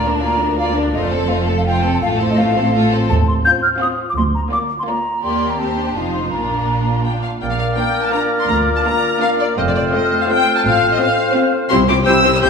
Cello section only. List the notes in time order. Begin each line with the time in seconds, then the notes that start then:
Already playing: D2
0.96 F2
2.03 A2
3.11 D#2
4.18 D2
5.25 D#2
5.96 F2
6.32 A#2
7.42 A#2
8.49 D2
9.58 F2
10.64 A2
11.71 C2
12.07 C2
12.43 C2